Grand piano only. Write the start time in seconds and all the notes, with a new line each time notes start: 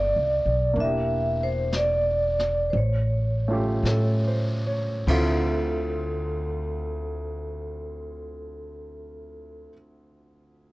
Already playing: B2 D4 E4 G4 A4
0.74 A#3 D4
0.81 E4 G4
3.48 A3 C#4 F4
3.53 G4
3.88 A4
4.27 C5
4.67 C#5
5.07 D2 D3 C4 E4 F4